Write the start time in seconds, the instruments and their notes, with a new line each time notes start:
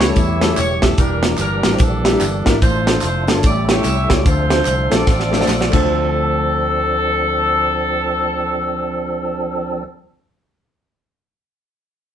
Already playing: fingered electric bass C#2, tonewheel organ C#3 E3 G3 A3 G4, saxophone section E4 G4 C#5
0.00 grand piano A3 C#4 E4 G4, snare, closed hi-hat, tambourine
0.07 grand piano G3 A3 C#4 E4 A4
0.16 fingered electric bass E2, grand piano A2, saxophone section G4 C#5 E5, kick, closed hi-hat, tambourine
0.40 grand piano G3 A3 C#4 E4 A4, snare, closed hi-hat, tambourine
0.48 grand piano G3 A3 C#4 E4 G4
0.57 fingered electric bass E1, saxophone section C#5, clap, closed hi-hat, tambourine
0.81 fingered electric bass D#1, grand piano G3 A3 C#4 E4 G4, saxophone section A4, kick, snare, closed hi-hat, tambourine
0.97 fingered electric bass E1, grand piano E3, tonewheel organ E3 G3 A#3 D4 G4, saxophone section D4 G4 A#4, kick, closed hi-hat, tambourine
1.23 grand piano G3 A#3 D4 E4 A#4, snare, closed hi-hat, tambourine
1.38 fingered electric bass G1, saxophone section D4 G4 A#4, clap, closed hi-hat, tambourine
1.63 fingered electric bass A1, grand piano G3 A#3 D4 E4 A#4, snare, closed hi-hat, tambourine
1.71 grand piano G3 A#3 D4 E4 C5
1.78 fingered electric bass A#1, saxophone section D4 A4, kick, closed hi-hat, tambourine
2.04 grand piano G3 A#3 D4 E4 G4, snare, closed hi-hat, tambourine
2.12 grand piano G3 A#3 D4 E4 G4
2.20 fingered electric bass G1, clap, closed hi-hat, tambourine
2.45 fingered electric bass G#1, grand piano G3 A#3 D4 E4 A#4, kick, snare, closed hi-hat, tambourine
2.62 fingered electric bass A1, grand piano A2, tonewheel organ A3 D4 F4, saxophone section F4 A4 C5, kick, closed hi-hat, tambourine
2.86 grand piano D4 F4 A4, snare, closed hi-hat, tambourine
3.01 fingered electric bass F1, saxophone section C5, clap, closed hi-hat, tambourine
3.27 fingered electric bass G1, grand piano D4 F4 A4, saxophone section C#5, snare, closed hi-hat, tambourine
3.35 grand piano D4 F4 A4
3.43 fingered electric bass A1, grand piano A2, tonewheel organ G3 A3 C#4 E4 G4, saxophone section G4 D5, kick, closed hi-hat, tambourine
3.49 tonewheel organ A4
3.68 grand piano A3 C#4 E4 G4 C#5, saxophone section G4 C#5 E5, snare, closed hi-hat, tambourine
3.76 grand piano A3 C#4 E4 G4 C#5
3.84 fingered electric bass C2, clap, closed hi-hat, tambourine
4.09 fingered electric bass C#2, grand piano A3 C#4 E4 G4 C#5, saxophone section D5, kick, snare, closed hi-hat, tambourine
4.25 fingered electric bass D2, grand piano D3, tonewheel organ F3 A3 C4 D4 A4, saxophone section F4 A4 C5, kick, closed hi-hat, tambourine
4.50 grand piano A3 C4 D4 F4 C5, snare, closed hi-hat, tambourine
4.65 fingered electric bass C2, clap, closed hi-hat, tambourine
4.90 fingered electric bass A#1, grand piano A3 C4 D4 F4 A4, saxophone section F4 A4 D5, snare, closed hi-hat, tambourine
4.98 grand piano A3 C4 D4 F4 A4
5.07 fingered electric bass A1, kick, snare, tambourine
5.20 snare
5.31 grand piano A3 C4 D4 F4 C5, snare, tambourine
5.40 grand piano A3 C4 D4 F4 D5, snare
5.47 fingered electric bass A#1, snare, clap, tambourine
5.61 snare
5.69 grand piano D2 A3 D4, tonewheel organ C4, saxophone section A4, clap
5.73 fingered electric bass D2, tonewheel organ F3 D4 A4, grand piano F4 C5, kick, crash